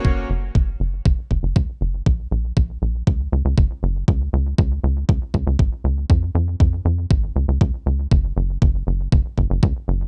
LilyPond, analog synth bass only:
\new Staff \with { instrumentName = "Analog synth bass" } { \clef bass \time 4/4 \key ges \lydian \tempo 4 = 119 ges,,8 ges,,8 ges,,8 ges,,8 ges,,16 r16 ges,,16 ges,,16 des,16 r16 ges,,8 | bes,,8 bes,,8 bes,,8 bes,,8 des,8 des,16 des,16 ges,,16 r16 ges,,8 | des,8 des,8 des,8 des,8 des,16 r16 des,16 des,16 aes,,16 r16 des,8 | f,8 f,8 f,8 f,8 aes,,8 des,16 des,16 des,16 r16 des,8 |
ges,,8 ges,,8 ges,,8 ges,,8 ges,,16 r16 ges,,16 ges,,16 des,16 r16 ges,,8 | }